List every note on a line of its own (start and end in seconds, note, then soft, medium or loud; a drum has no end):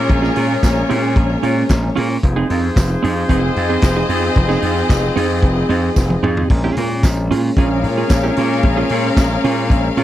0.00 0.12 A#2 loud
0.00 2.18 G#3 medium
0.00 2.18 A#3 medium
0.00 1.92 C#4 medium
0.00 2.18 C#4 medium
0.00 1.92 F4 medium
0.00 2.18 G#4 medium
0.00 1.92 A#4 loud
0.00 2.18 C#5 medium
0.09 0.29 A#1 medium
0.09 muted clean electric guitar stroke soft
0.09 kick loud
0.09 closed hi-hat medium
0.22 0.34 C#4 medium
0.22 0.35 F4 medium
0.22 0.35 G#4 medium
0.22 snare soft
0.35 0.55 A#2 medium
0.35 0.52 C#4 medium
0.35 0.48 F4 medium
0.35 0.47 G#4 medium
0.35 open hi-hat medium
0.49 muted clean electric guitar stroke medium
0.63 0.82 A#1 loud
0.63 kick loud
0.63 snare loud
0.63 clap medium
0.63 closed hi-hat medium
0.63 tambourine loud
0.76 muted clean electric guitar stroke soft
0.89 1.18 A#2 medium
0.89 1.11 C#4 medium
0.89 1.03 F4 medium
0.89 1.02 G#4 medium
0.89 open hi-hat medium
1.03 muted clean electric guitar stroke medium
1.16 1.35 A#1 medium
1.16 muted clean electric guitar stroke soft
1.16 kick loud
1.16 closed hi-hat medium
1.30 muted clean electric guitar stroke soft
1.43 1.62 A#2 medium
1.43 1.64 C#4 medium
1.43 1.56 F4 medium
1.43 1.55 G#4 medium
1.43 open hi-hat soft
1.56 muted clean electric guitar stroke soft
1.69 1.89 A#1 loud
1.69 kick medium
1.69 snare loud
1.69 clap loud
1.69 closed hi-hat medium
1.69 tambourine loud
1.83 muted clean electric guitar stroke soft
1.96 2.16 A#2 loud
1.96 2.17 C#4 medium
1.96 2.09 F4 medium
1.96 2.09 G#4 loud
1.96 open hi-hat medium
2.10 muted clean electric guitar stroke soft
2.23 2.42 F1 loud
2.23 6.46 F3 medium
2.23 6.46 C4 medium
2.23 6.47 D#4 medium
2.23 6.20 F4 medium
2.23 6.19 G#4 medium
2.23 6.46 G#4 medium
2.23 6.20 C5 loud
2.23 muted clean electric guitar stroke soft
2.23 kick loud
2.23 closed hi-hat medium
2.36 2.48 C4 medium
2.36 2.49 D#4 medium
2.36 2.50 G#4 medium
2.50 2.69 F2 medium
2.50 2.66 C4 medium
2.50 2.62 D#4 medium
2.50 2.63 A#4 medium
2.50 open hi-hat medium
2.63 muted clean electric guitar stroke soft
2.76 2.95 F1 medium
2.76 kick loud
2.76 snare medium
2.76 clap medium
2.76 closed hi-hat medium
2.76 tambourine loud
2.90 muted clean electric guitar stroke soft
3.03 3.23 F2 loud
3.03 3.24 C4 medium
3.03 3.16 D#4 medium
3.03 3.15 G#4 medium
3.03 open hi-hat medium
3.16 muted clean electric guitar stroke soft
3.28 3.49 F1 loud
3.28 6.45 C4 medium
3.28 3.51 C4 medium
3.28 3.42 D#4 medium
3.28 6.46 G#4 medium
3.28 3.41 G#4 loud
3.28 6.45 D#5 loud
3.28 kick loud
3.28 closed hi-hat medium
3.42 muted clean electric guitar stroke soft
3.56 3.75 F2 medium
3.56 muted clean electric guitar stroke soft
3.56 open hi-hat soft
3.69 3.81 C4 medium
3.69 3.82 D#4 medium
3.69 3.82 G#4 medium
3.82 4.02 F1 medium
3.82 kick loud
3.82 snare loud
3.82 clap medium
3.82 closed hi-hat medium
3.82 tambourine loud
3.96 4.07 C4 medium
3.96 4.08 D#4 medium
3.96 4.09 G#4 medium
4.09 4.28 F2 medium
4.09 4.26 C4 medium
4.09 4.22 D#4 medium
4.09 4.21 G#4 medium
4.09 open hi-hat medium
4.22 muted clean electric guitar stroke soft
4.36 4.55 F1 loud
4.36 muted clean electric guitar stroke soft
4.36 kick loud
4.36 closed hi-hat medium
4.48 4.60 C4 medium
4.48 4.61 D#4 medium
4.48 4.61 G#4 medium
4.48 snare soft
4.61 4.82 F2 medium
4.61 4.79 C4 medium
4.61 4.75 D#4 medium
4.61 4.74 G#4 medium
4.61 open hi-hat medium
4.75 muted clean electric guitar stroke medium
4.90 5.09 F1 loud
4.90 kick loud
4.90 snare medium
4.90 clap medium
4.90 closed hi-hat medium
4.90 tambourine medium
5.02 muted clean electric guitar stroke soft
5.16 5.44 F2 medium
5.16 5.37 C4 medium
5.16 5.29 D#4 medium
5.16 5.28 G#4 loud
5.16 open hi-hat medium
5.30 muted clean electric guitar stroke soft
5.42 5.62 F1 loud
5.42 muted clean electric guitar stroke soft
5.42 kick loud
5.42 closed hi-hat medium
5.56 muted clean electric guitar stroke soft
5.69 5.89 F2 medium
5.69 5.91 C4 medium
5.69 5.83 D#4 medium
5.69 5.82 G#4 medium
5.69 open hi-hat soft
5.83 muted clean electric guitar stroke soft
5.96 6.16 F1 medium
5.96 muted clean electric guitar stroke soft
5.96 kick loud
5.96 snare medium
5.96 tambourine medium
6.10 muted clean electric guitar stroke soft
6.10 high tom medium
6.23 6.42 F2 loud
6.23 6.37 C4 medium
6.23 6.36 D#4 medium
6.23 6.36 G#4 medium
6.23 mid tom medium
6.37 6.50 C4 soft
6.37 6.50 D#4 medium
6.37 6.50 G#4 medium
6.37 floor tom medium
6.49 6.69 A#1 medium
6.49 10.04 G#3 medium
6.49 10.04 A#3 medium
6.49 10.04 C#4 medium
6.49 muted clean electric guitar stroke soft
6.49 kick loud
6.49 splash medium
6.64 6.76 C#4 medium
6.64 6.77 F4 medium
6.64 6.78 G#4 medium
6.77 7.05 A#2 loud
6.77 6.94 C#4 medium
6.77 6.91 F4 medium
6.77 6.91 A#4 medium
6.77 open hi-hat medium
6.91 muted clean electric guitar stroke soft
7.03 7.32 A#1 loud
7.03 kick loud
7.03 snare medium
7.03 clap medium
7.03 closed hi-hat medium
7.03 tambourine loud
7.17 muted clean electric guitar stroke soft
7.30 7.49 A#2 loud
7.30 7.52 C#4 medium
7.30 7.44 F4 medium
7.30 7.43 G#4 medium
7.30 open hi-hat medium
7.44 muted clean electric guitar stroke soft
7.56 7.85 A#1 medium
7.56 10.04 C#4 medium
7.56 7.78 C#4 medium
7.56 7.71 F4 medium
7.56 10.04 G#4 medium
7.56 7.70 G#4 medium
7.56 10.04 A#4 medium
7.56 10.04 C#5 medium
7.56 10.04 F5 medium
7.56 kick loud
7.56 closed hi-hat medium
7.71 muted clean electric guitar stroke soft
7.84 8.02 A#2 loud
7.84 muted clean electric guitar stroke soft
7.84 open hi-hat soft
7.98 8.09 C#4 medium
7.98 8.10 F4 medium
7.98 8.10 G#4 medium
8.09 8.29 A#1 loud
8.09 muted clean electric guitar stroke soft
8.09 kick loud
8.09 snare loud
8.09 clap medium
8.09 closed hi-hat medium
8.09 tambourine loud
8.23 8.36 C#4 medium
8.23 8.36 F4 medium
8.23 8.37 G#4 medium
8.37 8.65 A#2 loud
8.37 8.54 C#4 medium
8.37 8.51 F4 medium
8.37 8.50 G#4 medium
8.37 open hi-hat medium
8.51 muted clean electric guitar stroke medium
8.63 8.82 A#1 loud
8.63 muted clean electric guitar stroke soft
8.63 kick loud
8.63 closed hi-hat medium
8.77 8.90 C#4 medium
8.77 8.90 F4 medium
8.77 8.90 G#4 medium
8.89 9.09 A#2 medium
8.89 9.07 C#4 medium
8.89 9.04 F4 medium
8.89 9.04 G#4 medium
8.89 open hi-hat medium
9.05 muted clean electric guitar stroke medium
9.17 9.36 A#1 medium
9.17 kick loud
9.17 snare loud
9.17 clap medium
9.17 closed hi-hat medium
9.17 tambourine loud
9.31 muted clean electric guitar stroke soft
9.44 9.72 A#2 medium
9.44 9.65 C#4 medium
9.44 9.57 F4 medium
9.44 9.56 G#4 medium
9.44 open hi-hat medium
9.57 muted clean electric guitar stroke medium
9.70 9.89 A#1 loud
9.70 muted clean electric guitar stroke soft
9.70 kick loud
9.70 closed hi-hat medium
9.84 muted clean electric guitar stroke soft
9.97 10.04 A#2 medium
9.97 10.04 C#4 medium
9.97 10.04 F4 medium
9.97 10.04 G#4 medium
9.97 open hi-hat soft